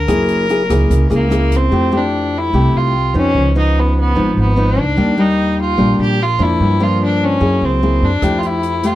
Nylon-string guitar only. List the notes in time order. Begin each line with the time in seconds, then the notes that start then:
0.08 F#3 A#3 E4 G#4
0.50 A#3 E4 G#4
0.70 A#3 E4 G#4
0.90 C#3
1.10 A#3 E4 G#4
1.30 A#3 E4 G#4
1.72 F3 A3 E4 G4
1.92 A3 E4 G4
2.54 C3 A3 E4 G4
3.14 F3 B3 D#4
3.34 C#3
3.55 F3 B3 D#4
4.15 G#2 F3 B3 D#4
4.56 F3 B3 D#4
4.97 D#3 G3 A#3 D4
5.18 G3 A#3
5.78 A#2 G3 A#3 D4
6.39 F3 A#3 D4
6.61 G2
6.80 F3 A#3 D4
7.40 F#3 A#3 E4 G#4
7.83 A#3 E4 G#4
8.22 F3 A3 E4 G4
8.83 A3 G4